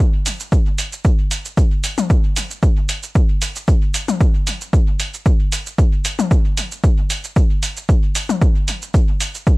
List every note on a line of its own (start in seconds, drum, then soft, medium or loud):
0.00 kick loud
0.00 shaker soft
0.26 open hi-hat medium
0.26 shaker medium
0.40 shaker soft
0.52 kick loud
0.52 shaker soft
0.78 open hi-hat medium
0.78 shaker medium
0.93 shaker soft
1.05 kick loud
1.05 shaker soft
1.31 open hi-hat medium
1.31 shaker medium
1.45 shaker soft
1.57 kick loud
1.57 shaker soft
1.84 open hi-hat medium
1.84 shaker medium
1.98 high tom medium
1.98 shaker soft
2.10 kick loud
2.10 shaker soft
2.36 open hi-hat medium
2.36 shaker medium
2.51 shaker soft
2.63 kick loud
2.63 shaker soft
2.89 open hi-hat medium
2.89 shaker medium
3.03 shaker soft
3.15 kick loud
3.15 shaker soft
3.42 open hi-hat medium
3.42 shaker medium
3.56 shaker soft
3.68 kick loud
3.68 shaker soft
3.94 open hi-hat medium
3.94 shaker medium
4.08 high tom medium
4.08 shaker soft
4.21 kick loud
4.21 shaker soft
4.47 open hi-hat medium
4.47 shaker medium
4.61 shaker soft
4.73 kick loud
4.73 shaker soft
5.00 open hi-hat medium
5.00 shaker medium
5.14 shaker soft
5.26 kick loud
5.26 shaker soft
5.52 open hi-hat medium
5.52 shaker medium
5.66 shaker soft
5.78 kick loud
5.78 shaker soft
6.05 open hi-hat medium
6.05 shaker medium
6.19 high tom medium
6.19 shaker soft
6.31 kick loud
6.31 shaker soft
6.57 open hi-hat medium
6.57 shaker medium
6.72 shaker soft
6.84 kick loud
6.84 shaker soft
7.10 open hi-hat medium
7.10 shaker medium
7.24 shaker soft
7.36 kick loud
7.36 shaker soft
7.63 open hi-hat medium
7.63 shaker medium
7.77 shaker soft
7.89 kick loud
7.89 shaker soft
8.15 open hi-hat medium
8.15 shaker medium
8.29 high tom medium
8.29 shaker soft
8.42 kick loud
8.42 shaker soft
8.68 open hi-hat medium
8.68 shaker medium
8.82 shaker soft
8.94 kick loud
8.94 shaker soft
9.20 open hi-hat medium
9.20 shaker medium
9.35 shaker soft
9.47 kick loud
9.47 shaker soft